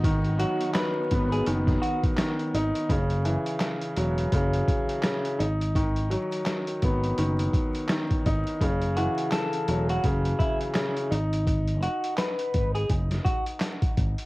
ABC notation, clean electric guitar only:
X:1
M:4/4
L:1/16
Q:"Swing 16ths" 1/4=84
K:Bmix
V:1 name="Clean electric guitar"
z2 F2 B3 G z2 F z4 z | z16 | z16 | z2 F2 A3 F z2 E z4 z |
z2 F2 B3 G z2 F z4 z |]